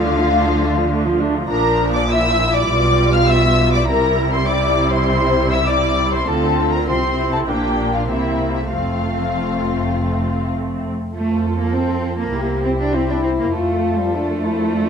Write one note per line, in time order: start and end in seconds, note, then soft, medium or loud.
0.00 1.50 D2 medium
0.00 1.50 D3 medium
0.00 0.17 A3 soft
0.00 0.17 D4 soft
0.00 1.21 F4 medium
0.00 1.20 F5 medium
0.17 0.32 F3 soft
0.17 0.32 F4 soft
0.33 0.46 A3 soft
0.33 0.46 D4 soft
0.46 0.61 F3 soft
0.46 0.61 F4 soft
0.61 0.76 A3 soft
0.61 0.76 D4 soft
0.76 0.91 F3 soft
0.76 0.91 F4 soft
0.90 1.04 A3 soft
0.90 1.04 D4 soft
1.05 1.20 F3 soft
1.05 1.20 F4 soft
1.20 1.35 A3 soft
1.20 1.35 D4 soft
1.35 1.48 F3 soft
1.35 1.50 F4 soft
1.49 2.65 A#1 medium
1.49 2.65 A#2 medium
1.49 2.65 F3 medium
1.49 2.05 D4 medium
1.49 1.92 A#4 medium
1.49 1.91 A#5 medium
1.95 2.01 D5 medium
1.95 2.10 D6 medium
2.09 2.69 E4 soft
2.09 2.53 E5 medium
2.09 2.54 E6 medium
2.53 3.14 D5 medium
2.53 3.13 D6 medium
2.69 3.86 B1 medium
2.69 3.86 B2 medium
2.69 3.87 G3 soft
2.69 3.88 F4 medium
3.13 3.28 F5 medium
3.13 3.28 F6 medium
3.28 3.73 E5 medium
3.28 3.73 E6 medium
3.72 3.80 D5 medium
3.72 3.87 D6 medium
3.88 6.27 C2 medium
3.88 6.27 C3 medium
3.88 6.23 G3 medium
3.88 6.23 E4 medium
3.88 4.32 A#4 medium
3.88 4.32 A#5 medium
4.33 4.48 C5 medium
4.33 4.47 C6 medium
4.47 4.91 D5 medium
4.47 4.92 D6 medium
4.92 5.52 C5 medium
4.92 5.50 C6 medium
5.52 5.67 E5 medium
5.52 5.67 E6 medium
5.66 6.11 D5 medium
5.66 6.12 D6 medium
6.12 6.27 C5 medium
6.12 6.27 C6 medium
6.26 6.87 D2 soft
6.26 6.86 D3 medium
6.26 6.86 C4 soft
6.26 6.86 F4 soft
6.26 6.71 A4 medium
6.26 6.72 A5 medium
6.72 6.88 A#4 soft
6.72 6.87 A#5 medium
6.87 7.48 C2 soft
6.87 7.48 C3 soft
6.87 7.47 C4 soft
6.87 6.96 F4 soft
6.87 7.32 C5 medium
6.87 7.31 C6 medium
7.18 7.47 E4 soft
7.32 7.39 A4 soft
7.32 7.38 A5 medium
7.48 8.07 A#1 soft
7.48 8.07 A#2 soft
7.48 8.08 A#3 soft
7.48 8.09 D4 soft
7.48 7.92 G4 soft
7.48 7.92 G5 medium
7.93 8.08 F4 soft
7.93 8.08 F5 soft
8.08 8.70 C2 soft
8.08 8.70 C3 soft
8.08 8.69 A#3 soft
8.08 8.69 C4 soft
8.08 8.53 E4 soft
8.08 8.54 E5 medium
8.55 8.61 E4 soft
8.55 8.69 E5 soft
8.70 10.95 F1 soft
8.70 10.95 F2 soft
8.70 10.91 A3 soft
8.70 10.91 C4 soft
8.70 10.50 F4 soft
8.70 10.50 F5 medium
11.14 12.30 F2 soft
11.14 11.56 A3 soft
11.14 12.30 F4 soft
11.14 12.31 A4 soft
11.14 14.89 C5 soft
11.60 11.74 A#3 soft
11.74 12.19 C4 medium
12.19 12.63 A#3 soft
12.34 13.54 C2 soft
12.34 13.50 E4 soft
12.34 13.50 G4 soft
12.34 12.91 G4 soft
12.64 12.70 C4 medium
12.80 12.94 D4 soft
12.94 13.09 C4 soft
12.94 13.54 E4 soft
13.09 13.24 D4 medium
13.24 13.30 C4 soft
13.39 13.54 A#3 soft
13.54 14.89 F2 soft
13.54 13.98 A3 medium
13.54 14.89 F4 soft
13.54 14.14 F4 soft
13.54 14.89 A4 soft
13.99 14.14 G3 soft
14.13 14.89 A3 medium
14.13 14.45 D4 soft
14.45 14.74 E4 soft
14.74 14.89 D4 soft